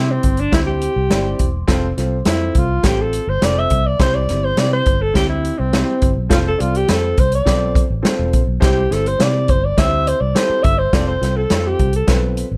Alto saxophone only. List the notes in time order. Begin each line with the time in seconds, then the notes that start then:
Already playing: E4
0.11 C4
0.40 D4
0.54 E4
0.67 G4
2.28 E4
2.58 F4
2.85 G4
3.02 A4
3.29 C5
3.44 D5
3.59 E5
3.86 D5
4.01 C5
4.15 D5
4.44 C5
4.58 D5
4.73 C5
5.02 A4
5.16 G4
5.29 E4
5.59 C4
6.33 F4
6.48 A4
6.61 F4
6.77 G4
6.91 A4
7.19 C5
7.35 D5
8.64 G4
8.92 A4
9.08 C5
9.22 D5
9.50 C5
9.64 D5
9.79 E5
10.08 C5
10.21 D5
10.35 C5
10.63 E5
10.78 C5
10.93 D5
11.07 C5
11.37 A4
11.67 G4
11.96 A4